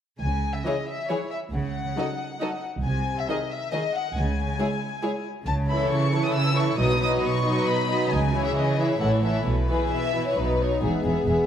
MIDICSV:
0, 0, Header, 1, 7, 480
1, 0, Start_track
1, 0, Key_signature, 4, "minor"
1, 0, Tempo, 439239
1, 228, Time_signature, 3, 2, 24, 8
1, 5969, Key_signature, 4, "major"
1, 8862, Tempo, 453172
1, 12415, End_track
2, 0, Start_track
2, 0, Title_t, "Violin section"
2, 0, Program_c, 0, 48
2, 217, Note_on_c, 0, 80, 47
2, 563, Note_off_c, 0, 80, 0
2, 588, Note_on_c, 0, 76, 42
2, 712, Note_off_c, 0, 76, 0
2, 723, Note_on_c, 0, 75, 51
2, 960, Note_off_c, 0, 75, 0
2, 963, Note_on_c, 0, 76, 48
2, 1196, Note_off_c, 0, 76, 0
2, 1197, Note_on_c, 0, 73, 50
2, 1425, Note_on_c, 0, 76, 45
2, 1437, Note_off_c, 0, 73, 0
2, 1512, Note_off_c, 0, 76, 0
2, 1683, Note_on_c, 0, 78, 48
2, 2853, Note_off_c, 0, 78, 0
2, 3113, Note_on_c, 0, 80, 52
2, 3446, Note_off_c, 0, 80, 0
2, 3478, Note_on_c, 0, 76, 43
2, 3590, Note_on_c, 0, 75, 45
2, 3594, Note_off_c, 0, 76, 0
2, 3829, Note_off_c, 0, 75, 0
2, 3845, Note_on_c, 0, 76, 51
2, 4077, Note_off_c, 0, 76, 0
2, 4081, Note_on_c, 0, 75, 58
2, 4309, Note_off_c, 0, 75, 0
2, 4310, Note_on_c, 0, 78, 55
2, 4545, Note_off_c, 0, 78, 0
2, 4548, Note_on_c, 0, 80, 48
2, 5731, Note_off_c, 0, 80, 0
2, 5974, Note_on_c, 0, 81, 64
2, 6061, Note_off_c, 0, 81, 0
2, 6224, Note_on_c, 0, 83, 55
2, 6452, Note_off_c, 0, 83, 0
2, 6462, Note_on_c, 0, 85, 59
2, 6811, Note_off_c, 0, 85, 0
2, 6821, Note_on_c, 0, 87, 58
2, 6936, Note_off_c, 0, 87, 0
2, 6944, Note_on_c, 0, 88, 72
2, 7174, Note_off_c, 0, 88, 0
2, 7194, Note_on_c, 0, 85, 64
2, 7424, Note_off_c, 0, 85, 0
2, 7428, Note_on_c, 0, 87, 65
2, 7658, Note_off_c, 0, 87, 0
2, 7675, Note_on_c, 0, 87, 64
2, 7763, Note_off_c, 0, 87, 0
2, 7906, Note_on_c, 0, 85, 59
2, 8374, Note_off_c, 0, 85, 0
2, 8382, Note_on_c, 0, 83, 66
2, 8862, Note_off_c, 0, 83, 0
2, 8874, Note_on_c, 0, 80, 61
2, 9220, Note_off_c, 0, 80, 0
2, 9224, Note_on_c, 0, 76, 52
2, 9335, Note_off_c, 0, 76, 0
2, 9344, Note_on_c, 0, 75, 55
2, 9573, Note_off_c, 0, 75, 0
2, 9587, Note_on_c, 0, 76, 52
2, 9819, Note_on_c, 0, 78, 62
2, 9820, Note_off_c, 0, 76, 0
2, 9904, Note_off_c, 0, 78, 0
2, 10066, Note_on_c, 0, 76, 49
2, 10297, Note_off_c, 0, 76, 0
2, 10305, Note_on_c, 0, 71, 47
2, 11491, Note_off_c, 0, 71, 0
2, 11747, Note_on_c, 0, 76, 30
2, 11975, Note_off_c, 0, 76, 0
2, 11988, Note_on_c, 0, 76, 29
2, 12205, Note_off_c, 0, 76, 0
2, 12218, Note_on_c, 0, 76, 29
2, 12415, Note_off_c, 0, 76, 0
2, 12415, End_track
3, 0, Start_track
3, 0, Title_t, "Violin section"
3, 0, Program_c, 1, 48
3, 722, Note_on_c, 1, 68, 33
3, 722, Note_on_c, 1, 73, 33
3, 809, Note_off_c, 1, 68, 0
3, 809, Note_off_c, 1, 73, 0
3, 1199, Note_on_c, 1, 73, 34
3, 1201, Note_on_c, 1, 68, 34
3, 1286, Note_off_c, 1, 73, 0
3, 1288, Note_off_c, 1, 68, 0
3, 2163, Note_on_c, 1, 69, 32
3, 2166, Note_on_c, 1, 75, 34
3, 2251, Note_off_c, 1, 69, 0
3, 2253, Note_off_c, 1, 75, 0
3, 2639, Note_on_c, 1, 75, 33
3, 2641, Note_on_c, 1, 69, 36
3, 2727, Note_off_c, 1, 75, 0
3, 2728, Note_off_c, 1, 69, 0
3, 3603, Note_on_c, 1, 75, 34
3, 3605, Note_on_c, 1, 68, 35
3, 3690, Note_off_c, 1, 75, 0
3, 3692, Note_off_c, 1, 68, 0
3, 4066, Note_on_c, 1, 75, 39
3, 4070, Note_on_c, 1, 68, 35
3, 4153, Note_off_c, 1, 75, 0
3, 4158, Note_off_c, 1, 68, 0
3, 5015, Note_on_c, 1, 68, 42
3, 5017, Note_on_c, 1, 73, 37
3, 5102, Note_off_c, 1, 68, 0
3, 5104, Note_off_c, 1, 73, 0
3, 5491, Note_on_c, 1, 73, 40
3, 5492, Note_on_c, 1, 68, 36
3, 5579, Note_off_c, 1, 68, 0
3, 5579, Note_off_c, 1, 73, 0
3, 6202, Note_on_c, 1, 69, 40
3, 6205, Note_on_c, 1, 73, 38
3, 6677, Note_off_c, 1, 69, 0
3, 6678, Note_off_c, 1, 73, 0
3, 6692, Note_on_c, 1, 69, 43
3, 6693, Note_on_c, 1, 73, 39
3, 7164, Note_off_c, 1, 69, 0
3, 7165, Note_off_c, 1, 73, 0
3, 7177, Note_on_c, 1, 69, 40
3, 7179, Note_on_c, 1, 73, 37
3, 7411, Note_off_c, 1, 69, 0
3, 7412, Note_off_c, 1, 73, 0
3, 7426, Note_on_c, 1, 71, 41
3, 7426, Note_on_c, 1, 75, 39
3, 7653, Note_off_c, 1, 75, 0
3, 7657, Note_off_c, 1, 71, 0
3, 7666, Note_on_c, 1, 75, 40
3, 7670, Note_on_c, 1, 71, 37
3, 8134, Note_off_c, 1, 75, 0
3, 8136, Note_off_c, 1, 71, 0
3, 8148, Note_on_c, 1, 75, 41
3, 8150, Note_on_c, 1, 71, 44
3, 8616, Note_off_c, 1, 71, 0
3, 8616, Note_off_c, 1, 75, 0
3, 8636, Note_on_c, 1, 75, 38
3, 8639, Note_on_c, 1, 71, 35
3, 8864, Note_off_c, 1, 75, 0
3, 8865, Note_off_c, 1, 71, 0
3, 9105, Note_on_c, 1, 73, 35
3, 9106, Note_on_c, 1, 68, 39
3, 9568, Note_off_c, 1, 68, 0
3, 9568, Note_off_c, 1, 73, 0
3, 9589, Note_on_c, 1, 68, 36
3, 9590, Note_on_c, 1, 73, 36
3, 9803, Note_off_c, 1, 73, 0
3, 9815, Note_on_c, 1, 73, 36
3, 9816, Note_off_c, 1, 68, 0
3, 9817, Note_on_c, 1, 69, 36
3, 10049, Note_off_c, 1, 73, 0
3, 10050, Note_off_c, 1, 69, 0
3, 10062, Note_on_c, 1, 69, 34
3, 10063, Note_on_c, 1, 73, 32
3, 10295, Note_off_c, 1, 69, 0
3, 10295, Note_off_c, 1, 73, 0
3, 10539, Note_on_c, 1, 71, 35
3, 10546, Note_on_c, 1, 68, 35
3, 10730, Note_off_c, 1, 71, 0
3, 10733, Note_off_c, 1, 68, 0
3, 10779, Note_on_c, 1, 76, 49
3, 11118, Note_off_c, 1, 76, 0
3, 11151, Note_on_c, 1, 73, 43
3, 11265, Note_on_c, 1, 71, 38
3, 11267, Note_off_c, 1, 73, 0
3, 11509, Note_off_c, 1, 71, 0
3, 11514, Note_on_c, 1, 73, 41
3, 11751, Note_on_c, 1, 68, 32
3, 11753, Note_off_c, 1, 73, 0
3, 11980, Note_off_c, 1, 68, 0
3, 11992, Note_on_c, 1, 68, 28
3, 12222, Note_off_c, 1, 68, 0
3, 12234, Note_on_c, 1, 68, 33
3, 12415, Note_off_c, 1, 68, 0
3, 12415, End_track
4, 0, Start_track
4, 0, Title_t, "French horn section"
4, 0, Program_c, 2, 60
4, 11750, Note_on_c, 2, 68, 34
4, 11752, Note_on_c, 2, 59, 32
4, 12415, Note_off_c, 2, 59, 0
4, 12415, Note_off_c, 2, 68, 0
4, 12415, End_track
5, 0, Start_track
5, 0, Title_t, "Viola section"
5, 0, Program_c, 3, 48
5, 718, Note_on_c, 3, 52, 32
5, 719, Note_on_c, 3, 64, 33
5, 805, Note_off_c, 3, 52, 0
5, 806, Note_off_c, 3, 64, 0
5, 1191, Note_on_c, 3, 64, 33
5, 1197, Note_on_c, 3, 52, 30
5, 1279, Note_off_c, 3, 64, 0
5, 1284, Note_off_c, 3, 52, 0
5, 2150, Note_on_c, 3, 63, 34
5, 2151, Note_on_c, 3, 54, 32
5, 2237, Note_off_c, 3, 63, 0
5, 2238, Note_off_c, 3, 54, 0
5, 2633, Note_on_c, 3, 63, 36
5, 2635, Note_on_c, 3, 54, 33
5, 2720, Note_off_c, 3, 63, 0
5, 2723, Note_off_c, 3, 54, 0
5, 3590, Note_on_c, 3, 51, 35
5, 3591, Note_on_c, 3, 63, 34
5, 3678, Note_off_c, 3, 51, 0
5, 3678, Note_off_c, 3, 63, 0
5, 4071, Note_on_c, 3, 63, 36
5, 4074, Note_on_c, 3, 51, 36
5, 4159, Note_off_c, 3, 63, 0
5, 4162, Note_off_c, 3, 51, 0
5, 5016, Note_on_c, 3, 64, 37
5, 5017, Note_on_c, 3, 56, 38
5, 5104, Note_off_c, 3, 64, 0
5, 5105, Note_off_c, 3, 56, 0
5, 5491, Note_on_c, 3, 64, 39
5, 5495, Note_on_c, 3, 56, 39
5, 5578, Note_off_c, 3, 64, 0
5, 5583, Note_off_c, 3, 56, 0
5, 6217, Note_on_c, 3, 52, 44
5, 6218, Note_on_c, 3, 64, 42
5, 6685, Note_off_c, 3, 52, 0
5, 6685, Note_off_c, 3, 64, 0
5, 6700, Note_on_c, 3, 52, 44
5, 6701, Note_on_c, 3, 64, 44
5, 7158, Note_off_c, 3, 52, 0
5, 7158, Note_off_c, 3, 64, 0
5, 7171, Note_on_c, 3, 52, 40
5, 7171, Note_on_c, 3, 64, 37
5, 7408, Note_off_c, 3, 52, 0
5, 7408, Note_off_c, 3, 64, 0
5, 7414, Note_on_c, 3, 54, 42
5, 7419, Note_on_c, 3, 63, 42
5, 7647, Note_off_c, 3, 54, 0
5, 7647, Note_off_c, 3, 63, 0
5, 7660, Note_on_c, 3, 54, 43
5, 7660, Note_on_c, 3, 63, 41
5, 8128, Note_off_c, 3, 54, 0
5, 8131, Note_off_c, 3, 63, 0
5, 8141, Note_on_c, 3, 54, 39
5, 8142, Note_on_c, 3, 63, 42
5, 8612, Note_off_c, 3, 54, 0
5, 8612, Note_off_c, 3, 63, 0
5, 8626, Note_on_c, 3, 63, 38
5, 8627, Note_on_c, 3, 54, 40
5, 8859, Note_off_c, 3, 54, 0
5, 8859, Note_off_c, 3, 63, 0
5, 9093, Note_on_c, 3, 64, 40
5, 9100, Note_on_c, 3, 52, 39
5, 9555, Note_off_c, 3, 64, 0
5, 9559, Note_off_c, 3, 52, 0
5, 9568, Note_on_c, 3, 64, 37
5, 9572, Note_on_c, 3, 52, 33
5, 9795, Note_off_c, 3, 52, 0
5, 9796, Note_off_c, 3, 64, 0
5, 9808, Note_on_c, 3, 52, 35
5, 9809, Note_on_c, 3, 64, 33
5, 10037, Note_off_c, 3, 52, 0
5, 10039, Note_off_c, 3, 64, 0
5, 10049, Note_on_c, 3, 52, 36
5, 10052, Note_on_c, 3, 64, 34
5, 10288, Note_off_c, 3, 52, 0
5, 10290, Note_off_c, 3, 64, 0
5, 10534, Note_on_c, 3, 52, 37
5, 10535, Note_on_c, 3, 64, 35
5, 11012, Note_off_c, 3, 52, 0
5, 11013, Note_off_c, 3, 64, 0
5, 11029, Note_on_c, 3, 64, 31
5, 11030, Note_on_c, 3, 52, 35
5, 11264, Note_off_c, 3, 52, 0
5, 11264, Note_off_c, 3, 64, 0
5, 11267, Note_on_c, 3, 63, 33
5, 11270, Note_on_c, 3, 54, 30
5, 11505, Note_off_c, 3, 63, 0
5, 11506, Note_off_c, 3, 54, 0
5, 11517, Note_on_c, 3, 63, 36
5, 11518, Note_on_c, 3, 54, 33
5, 11750, Note_off_c, 3, 54, 0
5, 11750, Note_off_c, 3, 63, 0
5, 11750, Note_on_c, 3, 59, 33
5, 11976, Note_off_c, 3, 59, 0
5, 11989, Note_on_c, 3, 59, 30
5, 12210, Note_off_c, 3, 59, 0
5, 12223, Note_on_c, 3, 59, 31
5, 12415, Note_off_c, 3, 59, 0
5, 12415, End_track
6, 0, Start_track
6, 0, Title_t, "Cello section"
6, 0, Program_c, 4, 48
6, 226, Note_on_c, 4, 49, 39
6, 633, Note_off_c, 4, 49, 0
6, 1667, Note_on_c, 4, 49, 39
6, 2071, Note_off_c, 4, 49, 0
6, 3099, Note_on_c, 4, 48, 43
6, 3504, Note_off_c, 4, 48, 0
6, 4549, Note_on_c, 4, 49, 47
6, 4939, Note_off_c, 4, 49, 0
6, 5959, Note_on_c, 4, 49, 46
6, 6387, Note_off_c, 4, 49, 0
6, 6450, Note_on_c, 4, 49, 53
6, 6875, Note_off_c, 4, 49, 0
6, 6931, Note_on_c, 4, 49, 49
6, 7357, Note_off_c, 4, 49, 0
6, 7405, Note_on_c, 4, 47, 52
6, 7836, Note_off_c, 4, 47, 0
6, 7893, Note_on_c, 4, 47, 51
6, 8321, Note_off_c, 4, 47, 0
6, 8375, Note_on_c, 4, 47, 49
6, 8801, Note_off_c, 4, 47, 0
6, 8854, Note_on_c, 4, 49, 49
6, 9272, Note_off_c, 4, 49, 0
6, 9329, Note_on_c, 4, 49, 49
6, 9754, Note_off_c, 4, 49, 0
6, 9805, Note_on_c, 4, 45, 44
6, 10233, Note_off_c, 4, 45, 0
6, 10288, Note_on_c, 4, 47, 42
6, 10722, Note_off_c, 4, 47, 0
6, 10777, Note_on_c, 4, 47, 44
6, 11206, Note_off_c, 4, 47, 0
6, 11258, Note_on_c, 4, 47, 42
6, 11690, Note_off_c, 4, 47, 0
6, 11742, Note_on_c, 4, 40, 33
6, 11826, Note_off_c, 4, 40, 0
6, 11975, Note_on_c, 4, 40, 30
6, 12059, Note_off_c, 4, 40, 0
6, 12217, Note_on_c, 4, 40, 34
6, 12302, Note_off_c, 4, 40, 0
6, 12415, End_track
7, 0, Start_track
7, 0, Title_t, "Double bass section"
7, 0, Program_c, 5, 48
7, 224, Note_on_c, 5, 37, 41
7, 611, Note_off_c, 5, 37, 0
7, 1667, Note_on_c, 5, 37, 39
7, 2050, Note_off_c, 5, 37, 0
7, 3108, Note_on_c, 5, 36, 42
7, 3488, Note_off_c, 5, 36, 0
7, 4531, Note_on_c, 5, 37, 44
7, 4909, Note_off_c, 5, 37, 0
7, 5964, Note_on_c, 5, 37, 46
7, 6368, Note_off_c, 5, 37, 0
7, 7411, Note_on_c, 5, 35, 53
7, 7817, Note_off_c, 5, 35, 0
7, 8862, Note_on_c, 5, 37, 50
7, 9255, Note_off_c, 5, 37, 0
7, 9810, Note_on_c, 5, 33, 46
7, 10214, Note_off_c, 5, 33, 0
7, 10290, Note_on_c, 5, 35, 40
7, 10701, Note_off_c, 5, 35, 0
7, 11253, Note_on_c, 5, 35, 42
7, 11665, Note_off_c, 5, 35, 0
7, 11745, Note_on_c, 5, 28, 36
7, 11830, Note_off_c, 5, 28, 0
7, 11983, Note_on_c, 5, 28, 33
7, 12068, Note_off_c, 5, 28, 0
7, 12214, Note_on_c, 5, 28, 32
7, 12299, Note_off_c, 5, 28, 0
7, 12415, End_track
0, 0, End_of_file